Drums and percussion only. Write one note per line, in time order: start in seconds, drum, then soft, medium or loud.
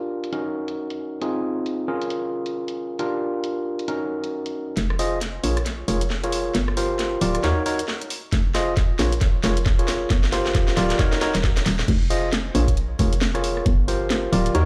0.24 closed hi-hat medium
0.33 closed hi-hat medium
0.68 closed hi-hat medium
0.90 closed hi-hat medium
1.22 closed hi-hat medium
1.66 closed hi-hat medium
2.02 closed hi-hat medium
2.10 closed hi-hat medium
2.46 closed hi-hat medium
2.68 closed hi-hat medium
2.99 closed hi-hat medium
3.44 closed hi-hat medium
3.79 closed hi-hat medium
3.88 closed hi-hat medium
4.24 closed hi-hat medium
4.46 closed hi-hat soft
4.77 snare soft
4.77 closed hi-hat medium
4.90 cross-stick medium
4.99 open hi-hat loud
5.21 snare soft
5.21 closed hi-hat medium
5.44 open hi-hat loud
5.57 cross-stick medium
5.57 closed hi-hat medium
5.66 snare medium
5.66 closed hi-hat medium
5.88 open hi-hat loud
6.01 closed hi-hat medium
6.10 snare medium
6.24 closed hi-hat medium
6.32 open hi-hat loud
6.55 snare medium
6.55 closed hi-hat medium
6.68 cross-stick medium
6.77 open hi-hat loud
6.99 snare medium
6.99 closed hi-hat medium
7.21 open hi-hat loud
7.35 cross-stick medium
7.35 closed hi-hat medium
7.44 snare medium
7.44 closed hi-hat medium
7.66 open hi-hat loud
7.79 closed hi-hat medium
7.88 snare medium
8.01 closed hi-hat medium
8.10 open hi-hat loud
8.33 kick loud
8.33 snare medium
8.33 closed hi-hat medium
8.55 snare medium
8.55 open hi-hat loud
8.77 kick loud
8.77 snare medium
8.77 closed hi-hat medium
8.99 snare medium
8.99 open hi-hat loud
9.12 closed hi-hat medium
9.21 kick loud
9.21 snare medium
9.21 closed hi-hat medium
9.44 snare medium
9.44 open hi-hat loud
9.57 closed hi-hat medium
9.66 kick loud
9.66 snare medium
9.79 closed hi-hat medium
9.88 snare medium
9.88 open hi-hat loud
10.10 kick loud
10.10 snare loud
10.10 closed hi-hat medium
10.24 snare medium
10.32 snare loud
10.32 open hi-hat loud
10.46 snare medium
10.55 kick loud
10.55 snare medium
10.55 closed hi-hat medium
10.68 snare medium
10.77 snare loud
10.77 open hi-hat loud
10.90 snare medium
10.90 closed hi-hat medium
10.99 kick loud
10.99 snare loud
10.99 closed hi-hat medium
11.13 snare medium
11.13 closed hi-hat soft
11.21 snare loud
11.21 open hi-hat loud
11.35 snare medium
11.35 closed hi-hat medium
11.44 kick loud
11.44 snare loud
11.57 snare loud
11.57 closed hi-hat medium
11.66 snare loud
11.66 open hi-hat loud
11.79 snare loud
11.88 kick loud
11.88 closed hi-hat medium
11.88 crash loud
12.10 open hi-hat loud
12.33 snare loud
12.33 closed hi-hat medium
12.55 open hi-hat loud
12.68 kick medium
12.68 closed hi-hat medium
12.77 closed hi-hat medium
12.99 kick loud
12.99 open hi-hat loud
13.13 closed hi-hat medium
13.21 snare loud
13.35 cross-stick medium
13.35 closed hi-hat medium
13.44 open hi-hat loud
13.57 cross-stick medium
13.66 kick loud
13.66 closed hi-hat medium
13.88 open hi-hat loud
14.10 snare loud
14.10 closed hi-hat medium
14.33 open hi-hat loud
14.46 closed hi-hat medium
14.55 closed hi-hat medium